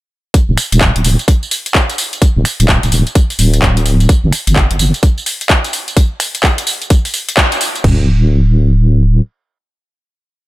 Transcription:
0.34 kick, closed hi-hat, tambourine
0.49 D1
0.58 finger snap, open hi-hat, tambourine
0.72 D1, closed hi-hat, tambourine
0.81 kick, clap, tambourine
0.96 D1, closed hi-hat
1.04 D1, open hi-hat, tambourine
1.19 closed hi-hat, tambourine
1.28 kick, closed hi-hat, tambourine
1.43 tambourine
1.51 open hi-hat, tambourine
1.66 closed hi-hat, tambourine
1.75 kick, clap, tambourine
1.90 closed hi-hat, tambourine
1.98 open hi-hat, tambourine
2.13 closed hi-hat, tambourine
2.22 kick, closed hi-hat, tambourine
2.36 D1
2.45 finger snap, open hi-hat, tambourine
2.60 D1, closed hi-hat, tambourine
2.69 kick, clap, tambourine
2.83 D1, closed hi-hat, tambourine
2.92 D1, open hi-hat, tambourine
3.07 closed hi-hat, tambourine
3.15 kick, closed hi-hat, tambourine
3.30 open hi-hat, tambourine
3.39 D1, open hi-hat, tambourine
3.54 closed hi-hat, tambourine
3.62 kick, clap, tambourine
3.77 closed hi-hat, tambourine
3.86 open hi-hat, tambourine
4.00 closed hi-hat, tambourine
4.09 kick, closed hi-hat, tambourine
4.24 G1
4.33 finger snap, open hi-hat, tambourine
4.47 G1, closed hi-hat, tambourine
4.56 kick, clap, tambourine
4.71 G1, closed hi-hat
4.79 G1, open hi-hat, tambourine
4.94 closed hi-hat, tambourine
5.03 kick, closed hi-hat, tambourine
5.18 tambourine
5.26 open hi-hat, tambourine
5.41 closed hi-hat, tambourine
5.50 kick, clap, tambourine
5.65 closed hi-hat, tambourine
5.73 open hi-hat, tambourine
5.88 closed hi-hat, tambourine
5.97 kick, closed hi-hat, tambourine
6.20 finger snap, open hi-hat, tambourine
6.35 closed hi-hat, tambourine
6.43 kick, clap, tambourine
6.58 closed hi-hat, tambourine
6.67 open hi-hat, tambourine
6.82 closed hi-hat, tambourine
6.90 kick, closed hi-hat, tambourine
7.05 open hi-hat, tambourine
7.14 open hi-hat, tambourine
7.29 closed hi-hat, tambourine
7.37 kick, clap, tambourine
7.52 closed hi-hat, tambourine
7.61 open hi-hat, tambourine
7.76 closed hi-hat, tambourine
7.84 D1, kick, floor tom, crash

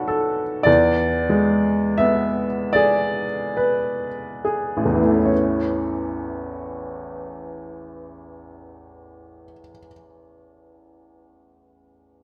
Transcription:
Already playing: B1 D4 F#4 A4 B4
0.08 A4
0.63 E2 D5
1.29 G#3
1.98 B3 E5
2.73 G#4 D5
3.57 B4
4.45 G#4
4.77 A1
4.85 E2
4.94 E3
5.03 A3
5.12 C#4
5.20 E4
5.25 C#5

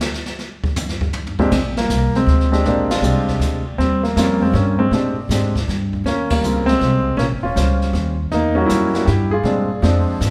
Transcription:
0.01 snare
0.14 snare
0.26 snare
0.39 snare
0.64 kick
0.76 floor tom, hi-hat pedal
0.89 snare
1.01 kick
1.13 floor tom
1.26 floor tom
1.39 A#2 G#3 C4 D4 G4, kick
1.51 A#1 G#3 C4, brush sweep, kick, snare, crash
1.77 G3 A#3, snare
1.90 C2, snare, hi-hat pedal
2.14 G#3 C4, muted upright bass stroke, snare
2.26 D2, snare
2.40 snare
2.52 G#3 C4 D4 G4, snare
2.65 A#1 A#3 D4, brush sweep, snare
2.91 D4 F4, snare, ride
3.02 C2 G#3 C4 D4 G4, hi-hat pedal
3.29 kick, snare
3.40 D2, snare, hi-hat pedal
3.78 D#2 G3 C4, brush sweep, snare
4.03 G3 A#3, snare
4.16 F2 G3 A#3 C4 C#4 F4, snare, hi-hat pedal
4.42 G#3 C4
4.53 G2 A#3 C#4, snare
4.79 G#3 C4
4.91 A#2 G#3 C4 D4 G4, brush sweep, snare
5.29 G#2 G#3 C4 D4 G4, snare, hi-hat pedal
5.56 kick, snare
5.68 G2, snare
5.93 kick
6.04 D#2 A#3 C#4, brush sweep, snare
6.30 G3 A#3, kick, crash
6.41 C#2 C#3 C4 G4, hi-hat pedal
6.45 F4
6.66 G#3 C4, snare
6.80 C2, snare
7.17 A#1 A#3 C#4, brush sweep, snare
7.31 G1
7.43 D#1 C#4 F4
7.55 C#2 G3 C#4 F4 C5, snare, hi-hat pedal
7.82 snare
7.93 D#2, snare
8.31 E2 A#3 D#4, brush sweep, snare
8.55 G3 A#3 C#4 F#4
8.66 F#2 C#4 E4, snare, hi-hat pedal
8.94 G3 A#3 C#4 F#4, snare
9.06 G2 E4 G4, snare
9.31 F4 G#4
9.43 A#2 G3 G#3 C4 D4, brush sweep, snare
9.82 F2 F3 G#3 C4 D4, snare
10.21 G#2, snare, hi-hat pedal

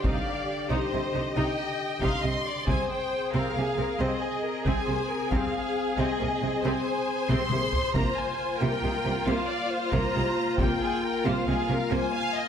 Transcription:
Already playing: D3 G4
0.04 C2 C3 D#4 D5 F5, taiko
0.70 C2 C3 D#4 C5 D#5
0.92 C2 C3 C4
1.14 C2 C3 D#4
1.36 C2 C3 D#4 D#5 G5
2.01 C2 C3 D#4 F5 C6, taiko
2.24 C2 C3 C4 D#5
2.46 D5
2.67 C2 C3 C4 G#4 C5 G#5, taiko
2.90 G5
3.33 C2 C3 C4 A#4 F5
3.55 C2 C3 A#3 G#4
3.77 C2 C3 C4 A#4
3.99 C2 C3 C4 C5 D#5
4.21 G#4
4.44 A#4
4.65 C2 C3 C4 G#4 G#5, taiko
4.86 C2 C3 A#3 C5
5.09 A#4
5.31 C2 C3 C4 G#4 F5, taiko
5.97 C2 C3 C4 D#5
6.19 C2 C3 A#3
6.41 C2 C3 C4
6.63 C2 C3 C4 C5 G#5
7.29 C2 C3 C4 C6, taiko mid
7.50 C2 C3 A#3, taiko mid
7.73 taiko low
7.94 C2 C3 A#3 F4 A#5, taiko
8.17 G#5
8.60 C2 C3 A#3 A#4 G5
8.83 C2 C3 G#3
9.05 C2 C3 A#3
9.26 C2 C3 A#3 C5 F5
9.49 D5
9.71 C5
9.92 C2 C3 A#3 A#5, taiko
10.15 C2 C3 G#3
10.59 C2 C3 A#3 A#4 G5, taiko
10.82 G#4
11.05 A#4
11.24 C2 C3 A#3 C5 F5
11.47 C2 C3 G#3 G#4
11.68 C2 C3 A#3 A#4
11.90 C2 C3 A#3 C5 G#5
12.15 F5
12.36 D#5

